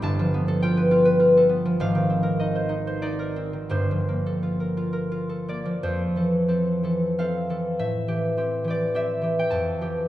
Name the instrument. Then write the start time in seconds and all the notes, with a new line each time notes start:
harp
Already playing: G3 G4 A4 B5
0.02 G1 G2 A5
0.19 F3
0.34 B3
0.48 A4
0.62 F4 G5
0.77 B4
0.91 F4
1.05 B4
1.19 F4
1.37 A4
1.49 B3
1.65 F3
1.80 G#1 G#2 F5
1.95 D#3
2.10 C4
2.23 A#4
2.40 D#4 D#5
2.55 C5
2.69 D#4
2.87 C5
3.02 D#4 D5
3.19 A#4
3.36 C4
3.53 D#3
3.69 G1 G2 C5
3.91 F3
4.08 A#3
4.26 A4
4.43 F4
4.60 A#4
4.77 F4
4.93 A#4
5.12 F4
5.29 A4
5.48 A#3 D5
5.65 F3
5.83 F2 C5
6.16 E3 A4
6.48 C4 A4
6.83 E3 A4
7.19 C4 A4 F5
7.50 E3 A4
7.79 A2 E5
8.08 E3 G4
8.37 C4 G4
8.64 E3 G4
8.70 D5
8.94 C4 G4 E5
9.22 E3 G4
9.39 G5
9.50 F2 A5
9.81 E3 G4